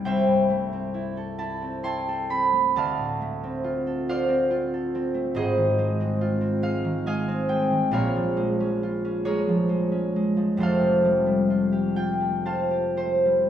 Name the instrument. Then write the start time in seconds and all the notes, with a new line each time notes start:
harp
Already playing: G3 G4
0.05 C2 C5 E5 G5
0.27 G2
0.50 A3
0.73 C4
0.94 E4
1.17 A4
1.38 E4 A5
1.62 C4
1.83 E4 G5 A5 C6
2.08 A4
2.30 C4 B5
2.53 A3
2.76 D2 D5 F5 A5
2.98 A2
3.21 A3
3.44 C4
3.64 F4
3.87 A4
4.09 F4 C5 D5 F5
4.29 C4
4.51 F4
4.74 A4
4.95 C4
5.14 A3
5.34 G#1 G#2 G#4 C5 D#5
5.57 D#3
5.79 G#3
6.00 C4
6.21 F4
6.41 C4
6.62 G#3 F5
6.85 D#3
7.06 G#3 D#5 F5 G#5
7.28 C4
7.49 G#3 G5
7.71 D#3
7.91 A#1 A#2 A#4 C#5 F5
8.16 F3
8.37 G#3
8.60 C#4
8.83 F4
9.05 C#4
9.25 G#3 G#4 A#4 C#5
9.48 F3
9.69 G#3
9.92 C#4
10.16 G#3
10.37 F3
10.57 F1 F2 A4 C5
10.63 F5
10.82 C3
11.05 G3
11.26 A3
11.50 F4
11.72 G4
11.96 F4 G5
12.20 A3
12.45 F4 C5 F5 A5
12.71 G4
12.97 A3 C5
13.25 G3